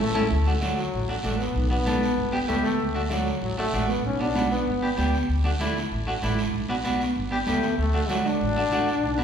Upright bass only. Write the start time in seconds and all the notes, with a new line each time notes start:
0.15 A1
0.31 D2
0.93 A1
1.24 A1
1.55 B1
2.17 G1
2.48 D2
2.79 D2
3.41 A1
3.73 A1
4.04 B1
4.67 G1
4.98 D2
5.29 D2
5.91 A1
6.23 A1
6.54 B1
7.16 G1
7.47 D2
7.78 D2
8.41 A1
8.71 A1
9.03 B1